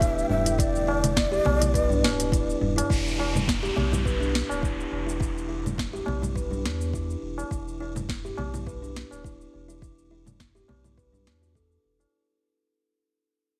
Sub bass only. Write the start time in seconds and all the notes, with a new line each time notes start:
Already playing: D1
0.30 E1
1.46 B1
2.03 D1
2.61 E1
2.90 E1
3.77 B1
4.50 D1
4.92 E1
6.07 B1
6.64 E2
7.22 E1
7.51 E1
8.38 B1
9.11 D1
9.54 E1
10.69 B1
11.26 E2
11.85 E1